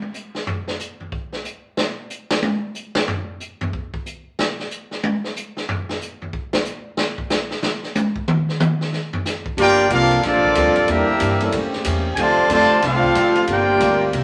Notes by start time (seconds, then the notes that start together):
0.02 high tom
0.14 hi-hat pedal
0.35 snare
0.47 floor tom
0.68 snare
0.80 hi-hat pedal
1.00 floor tom
1.12 kick
1.33 snare
1.45 hi-hat pedal
1.77 snare
2.10 hi-hat pedal
2.31 snare
2.42 high tom
2.75 hi-hat pedal
2.95 snare
3.08 floor tom
3.40 hi-hat pedal
3.61 floor tom
3.73 kick
3.94 kick
4.06 hi-hat pedal
4.39 snare
4.59 snare
4.71 hi-hat pedal
4.91 snare
5.04 high tom
5.24 snare
5.36 hi-hat pedal
5.57 snare
5.69 floor tom
5.89 snare
6.01 hi-hat pedal
6.22 floor tom
6.33 kick
6.53 snare
6.65 hi-hat pedal
6.97 snare
7.18 kick
7.30 snare, hi-hat pedal
7.50 snare
7.63 snare
7.83 snare
7.95 hi-hat pedal, high tom
8.16 kick
8.28 mid tom
8.49 snare
8.60 hi-hat pedal, mid tom
8.81 snare
8.93 snare
9.13 floor tom
9.25 snare, hi-hat pedal
9.46 kick
9.57 G1 G2 C3 F3 G3 A#3 C4 D4 F4 G4 A#4, ride
9.61 D5 G5
9.90 C2 G2 F3 A#3 C4 D4 F4 A4 F5, hi-hat pedal, ride
9.94 D4 A#4
10.11 ride
10.23 A#1 G2 F3 A#3 C4 D4 F4 A4 D5, snare, ride
10.43 kick
10.55 D2 G2 F3 G3 A#3 C4 F4 A4, hi-hat pedal, ride
10.66 A#1
10.76 G1, ride
10.87 E2 D3 E3 G3 A#3 D4 E4 G4 A#4 E5, ride
11.08 muted upright bass stroke
11.20 G2 E3 A#3 D4 G4, hi-hat pedal, ride
11.40 G3 A#3 C#4 E4 A4, ride
11.52 A2 C#3 G3 A#3 C#4 G4, ride
11.73 snare
11.84 E2 A2 G3 A#3 C#4, hi-hat pedal, ride
12.15 D2 C3 D3 F3 A3 C4 F4 G#5, ride
12.19 F4 C5 D5 A5
12.38 muted upright bass stroke
12.50 F2 C3 D3 F3 A3 C4 D4 F4 A4 C5 A5, hi-hat pedal, ride
12.54 F4 D5
12.70 muted upright bass stroke
12.82 C2 D3 A3 C4 D4 F4 A4 C5 F5, snare, ride
13.03 kick
13.15 A1 D3 F3 A3 C4 D4 F4 A4, hi-hat pedal, ride
13.35 ride
13.47 G1 C3 G3 A#3 C4 D4 F4 G4 A#4 D5, ride
13.51 F4 A#4 G5
13.80 D2 G3 A#3 C4 F4 A#4, hi-hat pedal, ride
14.12 C2 C3 E3 A#3 C4 E4 G4, ride